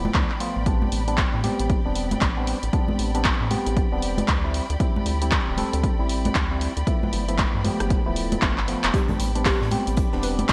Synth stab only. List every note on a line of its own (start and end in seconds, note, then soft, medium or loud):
0.00 0.12 F3 medium
0.00 0.12 A3 medium
0.00 0.12 B3 medium
0.00 0.13 E4 medium
0.14 0.31 F3 medium
0.14 0.31 A3 medium
0.14 0.31 B3 medium
0.14 0.31 D4 loud
0.40 0.64 F3 medium
0.40 0.64 A3 medium
0.40 0.64 B3 medium
0.40 0.64 F4 medium
0.66 1.04 G3 medium
0.66 1.04 B3 medium
0.66 1.04 C4 medium
0.66 1.04 D4 medium
1.08 1.41 G3 medium
1.08 1.41 B3 medium
1.08 1.41 C4 medium
1.08 1.41 D4 medium
1.44 1.82 G3 medium
1.44 1.82 B3 medium
1.44 1.82 C4 medium
1.44 1.82 G4 medium
1.85 2.33 G3 medium
1.85 2.33 B3 medium
1.85 2.33 C4 medium
1.85 2.33 D4 medium
2.37 2.59 G3 medium
2.37 2.59 B3 medium
2.37 2.59 C4 medium
2.37 2.59 D4 loud
2.73 3.11 G3 medium
2.73 3.11 B3 medium
2.73 3.11 C4 medium
2.73 3.11 D4 medium
3.15 3.48 G3 medium
3.15 3.48 B3 medium
3.15 3.48 C4 medium
3.15 3.48 D4 medium
3.51 3.88 G3 medium
3.51 3.89 B3 medium
3.51 3.89 C4 medium
3.51 3.89 G4 medium
3.92 4.40 G3 medium
3.92 4.40 B3 medium
3.92 4.40 C4 medium
3.92 4.40 D4 medium
4.44 4.66 G3 medium
4.44 4.66 C4 medium
4.44 4.66 E4 medium
4.80 5.18 G3 medium
4.80 5.18 C4 medium
4.80 5.18 E4 medium
5.21 5.55 G3 medium
5.21 5.55 C4 medium
5.21 5.55 E4 medium
5.57 5.95 G3 medium
5.57 5.95 C4 medium
5.57 5.96 A4 medium
5.99 6.47 G3 medium
5.99 6.47 C4 medium
5.99 6.47 E4 loud
6.51 6.72 G3 medium
6.51 6.73 C4 medium
6.51 6.73 E4 medium
6.87 7.25 F3 medium
6.87 7.25 A3 medium
6.87 7.25 B3 medium
6.87 7.25 E4 medium
7.28 7.62 F3 medium
7.28 7.62 A3 medium
7.28 7.62 B3 medium
7.28 7.62 E4 medium
7.64 8.02 F3 medium
7.64 8.02 A3 medium
7.64 8.02 B3 medium
7.64 8.02 G4 medium
8.06 8.40 F3 medium
8.06 8.40 A3 medium
8.06 8.40 B3 medium
8.06 8.40 E4 medium
8.42 8.59 F3 medium
8.42 8.59 A3 medium
8.42 8.59 B3 medium
8.42 8.59 D4 loud
8.68 8.91 F3 medium
8.68 8.91 A3 medium
8.68 8.91 B3 medium
8.68 8.91 F4 medium
8.94 9.32 G3 medium
8.94 9.32 B3 medium
8.94 9.32 C4 medium
8.94 9.32 D4 medium
9.35 9.69 G3 medium
9.35 9.69 B3 medium
9.35 9.69 C4 medium
9.35 9.69 D4 medium
9.71 10.09 G3 medium
9.71 10.09 B3 medium
9.71 10.09 C4 medium
9.71 10.09 G4 medium
10.13 10.53 G3 medium
10.13 10.53 B3 medium
10.13 10.53 C4 medium
10.13 10.53 D4 loud